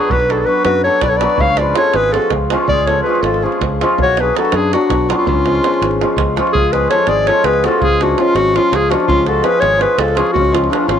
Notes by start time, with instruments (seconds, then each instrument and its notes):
Already playing: hammered dulcimer F#3, clarinet G#4
0.10 fingered electric bass B1, clarinet B4, davul low
0.20 davul high
0.29 hammered dulcimer F#3 B3 D4 F#4, clarinet A4, davul high
0.36 clarinet G#4 A4
0.46 hammered dulcimer F#3 B3 D4 F#4, clarinet B4
0.65 fingered electric bass F#2, accordion F#4, clarinet B4, davul high
0.84 hammered dulcimer F#3 B3 D4 F#4, accordion A4, clarinet C#5
1.01 fingered electric bass B1, accordion B4, clarinet D5, davul high, davul low
1.09 accordion A4, clarinet C#5
1.17 accordion B4, clarinet D5
1.21 hammered dulcimer F#3 B3 D4 F#4, davul high
1.30 davul high
1.38 fingered electric bass C#2, accordion C#5, clarinet F5, davul low
1.57 hammered dulcimer F3 G#3 C#4 F4, clarinet D5, davul high
1.62 accordion B4
1.74 hammered dulcimer F3 G#3 C#4 F4, clarinet C#5, davul high
1.79 accordion A4
1.84 davul high
1.94 fingered electric bass G#1, accordion G#4, clarinet B4, davul high
2.04 davul high
2.12 hammered dulcimer F3 G#3 C#4 F4, accordion F#4, clarinet A4, davul high
2.22 davul high
2.30 fingered electric bass C#2, davul high, davul low
2.50 hammered dulcimer F3 G#3 C#4 F4, davul high
2.68 fingered electric bass C#2, accordion G#4, clarinet D5, davul low
2.87 hammered dulcimer F3 G#3 C#4 F4, accordion A4, clarinet C#5, davul high
3.03 hammered dulcimer F3 G#3, accordion G#4, clarinet B4
3.07 hammered dulcimer C#4 F4
3.15 davul high
3.22 fingered electric bass G#1, accordion F4, clarinet A4, davul high
3.34 davul high
3.42 hammered dulcimer F3 G#3 C#4 F4, accordion F4, clarinet G#4
3.52 davul high
3.61 fingered electric bass C#2, davul high, davul low
3.81 hammered dulcimer F3 G#3 C#4 F4, davul high
3.98 fingered electric bass B1, clarinet C#5, davul low
4.03 accordion F#4
4.17 hammered dulcimer F#3 B3 D4 F#4, clarinet B4, davul high
4.22 accordion G#4
4.35 hammered dulcimer F#3 B3 D4 F#4, clarinet A4, davul high
4.39 accordion F#4
4.45 davul high
4.52 fingered electric bass F#2, accordion D4, clarinet G#4, davul high
4.62 davul high
4.73 hammered dulcimer F#3 B3 D4 F#4, accordion D4, clarinet F#4, davul high
4.81 davul high
4.90 fingered electric bass B1, davul high, davul low
5.09 hammered dulcimer F#3 B3 D4 F#4, accordion C#4, clarinet D4 F4, davul high
5.14 accordion B3, clarinet F4
5.20 accordion C#4
5.27 fingered electric bass C#2, accordion C#4, clarinet F4, davul low
5.46 hammered dulcimer F3 G#3 C#4 F4, davul high
5.55 davul high
5.64 hammered dulcimer F3 G#3 C#4 F4, davul high
5.74 davul high
5.81 fingered electric bass G#1, davul high
5.91 davul high
6.01 hammered dulcimer F3 G#3 C#4 F4, davul high
6.17 fingered electric bass C#2, davul high, davul low
6.36 hammered dulcimer F3 G#3 C#4 F4, davul high
6.47 davul high
6.52 fingered electric bass C#2, accordion F4, clarinet G#4, davul low
6.64 davul high
6.72 hammered dulcimer F3 G#3 C#4 F4, accordion G#4, clarinet B4, davul high
6.89 hammered dulcimer F3 G#3 C#4, accordion A4, clarinet C#5, davul high
6.93 hammered dulcimer F4
6.98 davul high
7.07 fingered electric bass G#1, accordion G#4, clarinet D5, davul high
7.26 hammered dulcimer F3 G#3 C#4, accordion A4, clarinet C#5, davul high
7.30 hammered dulcimer F4
7.44 fingered electric bass C#2, accordion G#4, clarinet B4, davul high
7.53 davul high
7.63 hammered dulcimer F3 G#3, accordion F#4, clarinet A4, davul high
7.67 hammered dulcimer C#4 F4
7.72 davul high
7.79 fingered electric bass C#2, accordion F4, clarinet G#4, davul low
7.91 davul high
8.00 hammered dulcimer F3 G#3 C#4 F4, accordion D4, clarinet F#4, davul high
8.18 hammered dulcimer F3 G#3 C#4 F4, accordion C#4, clarinet F4, davul high
8.28 davul high
8.35 fingered electric bass G#1, accordion C#4, clarinet F#4, davul high
8.54 hammered dulcimer F3 G#3 C#4 F4, accordion C#4, clarinet F4, davul high
8.72 fingered electric bass C#2, clarinet G#4, davul high
8.77 accordion F4
8.82 davul high
8.90 hammered dulcimer F3 G#3 C#4 F4, accordion D4, clarinet F#4, davul high
9.00 davul high
9.07 fingered electric bass C#2, accordion C#4, clarinet F4, davul low
9.18 davul high
9.26 hammered dulcimer F3 G#3 C#4 F4, accordion F#4, clarinet A4, davul high
9.43 hammered dulcimer F3 G#3 C#4 F4, accordion G#4, clarinet B4, davul high
9.52 davul high
9.60 fingered electric bass G#1, accordion G#4, clarinet C#5, davul high
9.77 hammered dulcimer F3 G#3 C#4 F4, accordion G#4, davul high
9.82 clarinet B4
9.98 fingered electric bass C#2, accordion F4, clarinet A4, davul high
10.08 davul high
10.15 hammered dulcimer F3 G#3 C#4 F4, accordion F4, clarinet G#4, davul high
10.27 davul high
10.33 fingered electric bass C#2, clarinet F#4, davul low
10.38 accordion C#4
10.45 davul high
10.52 hammered dulcimer F3 G#3 C#4 F4, accordion C#4, clarinet F4, davul high
10.64 davul high
10.70 hammered dulcimer F3 G#3 C#4 F4, accordion B3, clarinet D4, davul high
10.87 fingered electric bass G#1, accordion C#4, clarinet F4, davul high